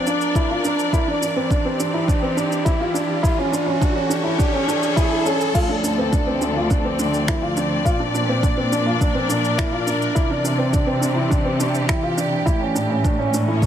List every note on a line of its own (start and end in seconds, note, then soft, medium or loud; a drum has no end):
0.00 0.93 F3 medium
0.00 1.86 D4 medium
0.00 1.86 A#4 medium
0.00 3.23 D5 medium
0.00 riser medium
0.07 0.32 D4 medium
0.07 shaker medium
0.21 shaker soft
0.35 0.48 E4 medium
0.35 kick loud
0.35 shaker soft
0.50 0.63 F4 medium
0.65 0.90 D4 medium
0.65 shaker medium
0.79 shaker soft
0.93 5.55 E3 medium
0.93 1.06 E4 loud
0.93 kick medium
0.93 shaker soft
1.08 1.20 D4 medium
1.22 1.35 D4 medium
1.22 shaker medium
1.29 3.25 C4 medium
1.36 1.49 C4 medium
1.50 1.64 D4 medium
1.50 kick loud
1.50 shaker soft
1.57 4.16 G4 medium
1.65 1.78 C4 medium
1.80 1.92 D4 medium
1.80 shaker medium
1.94 2.06 E4 medium
2.08 2.21 D4 medium
2.08 kick medium
2.08 shaker soft
2.22 2.35 C4 medium
2.37 2.62 D4 medium
2.37 shaker medium
2.52 shaker soft
2.65 2.78 E4 medium
2.65 kick loud
2.65 shaker soft
2.80 2.93 F4 medium
2.94 3.20 D4 medium
2.94 shaker medium
3.23 3.36 E4 loud
3.23 kick loud
3.23 shaker soft
3.38 3.51 C#4 medium
3.52 3.65 D4 medium
3.52 shaker medium
3.66 3.79 C#4 medium
3.81 3.94 D4 medium
3.81 kick loud
3.81 shaker soft
3.85 5.54 C#4 medium
3.85 7.86 A4 medium
3.95 4.08 C#4 medium
4.08 4.23 D4 medium
4.08 5.55 C#5 medium
4.08 shaker medium
4.24 4.37 E4 medium
4.38 4.51 D4 medium
4.38 kick loud
4.38 shaker soft
4.53 4.66 C#4 medium
4.68 4.93 D4 medium
4.68 shaker medium
4.83 shaker soft
4.96 5.09 E4 medium
4.96 kick loud
4.96 shaker soft
5.11 5.24 E4 medium
5.25 5.51 C#4 medium
5.25 shaker medium
5.41 shaker soft
5.55 7.83 D2 medium
5.55 10.17 F3 medium
5.55 5.67 F4 medium
5.55 kick loud
5.55 crash loud
5.55 shaker soft
5.69 5.82 D4 medium
5.76 8.78 C4 medium
5.83 5.96 D4 medium
5.83 shaker medium
5.91 12.48 D5 medium
5.98 6.11 C4 medium
6.12 6.25 D4 medium
6.12 kick loud
6.12 shaker soft
6.27 6.39 C4 medium
6.41 6.54 D4 medium
6.41 shaker medium
6.56 6.68 F4 medium
6.70 6.83 D4 medium
6.70 kick loud
6.70 shaker soft
6.85 6.97 C4 medium
6.99 7.24 D4 medium
6.99 shaker medium
7.14 shaker soft
7.28 7.41 E4 medium
7.28 finger snap medium
7.28 kick loud
7.28 shaker soft
7.42 7.55 F4 medium
7.57 7.82 D4 medium
7.57 shaker medium
7.85 10.14 A#2 loud
7.85 7.98 F4 loud
7.85 kick loud
7.85 shaker soft
8.00 8.12 D4 medium
8.10 11.09 D4 medium
8.14 8.27 D4 medium
8.14 shaker medium
8.29 8.41 C4 medium
8.43 8.56 D4 medium
8.43 kick loud
8.43 shaker soft
8.57 8.70 C4 medium
8.72 8.85 D4 medium
8.72 shaker medium
8.86 8.99 F4 medium
8.86 10.96 A#4 medium
9.01 9.13 D4 medium
9.01 kick loud
9.01 shaker soft
9.15 9.28 C4 medium
9.29 9.55 D4 medium
9.29 shaker medium
9.45 shaker soft
9.58 9.71 E4 medium
9.58 finger snap medium
9.58 kick loud
9.58 shaker soft
9.72 9.85 F4 medium
9.87 10.12 D4 medium
9.87 shaker medium
10.02 shaker soft
10.15 12.44 C3 medium
10.15 13.66 E3 medium
10.15 10.28 E4 loud
10.15 kick loud
10.15 shaker soft
10.30 12.47 C4 medium
10.30 10.43 D4 medium
10.44 10.57 D4 medium
10.44 shaker medium
10.58 10.71 C4 medium
10.73 10.86 D4 medium
10.73 kick loud
10.73 shaker soft
10.83 11.00 C4 medium
10.83 13.40 G4 medium
11.01 11.14 D4 medium
11.01 shaker medium
11.16 11.29 E4 medium
11.30 11.44 D4 medium
11.30 kick loud
11.30 shaker soft
11.45 11.58 C4 medium
11.60 11.85 D4 medium
11.60 shaker medium
11.75 shaker soft
11.89 12.02 E4 loud
11.89 finger snap medium
11.89 kick loud
11.89 shaker soft
12.03 12.16 F4 medium
12.17 12.43 D4 medium
12.17 shaker medium
12.46 13.66 A2 loud
12.46 12.59 E4 loud
12.46 kick loud
12.46 shaker soft
12.61 12.74 C#4 medium
12.75 12.88 D4 medium
12.75 shaker medium
12.90 13.03 C#4 medium
13.04 13.66 C#4 medium
13.04 13.17 D4 medium
13.04 kick loud
13.04 shaker soft
13.19 13.32 C#4 medium
13.34 13.46 D4 medium
13.34 shaker medium
13.48 13.61 E4 medium
13.48 13.66 A4 medium
13.48 13.66 C#5 medium
13.62 13.66 C#4 medium
13.62 kick loud
13.62 shaker soft